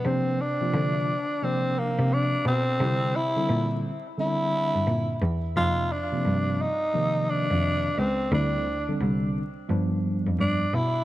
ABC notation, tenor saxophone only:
X:1
M:4/4
L:1/8
Q:"Swing 16ths" 1/4=87
K:Fdor
V:1 name="Tenor saxophone"
C D3 C B, D C- | C =E2 z E3 z | F D2 E2 D2 C | D2 z4 D =E |]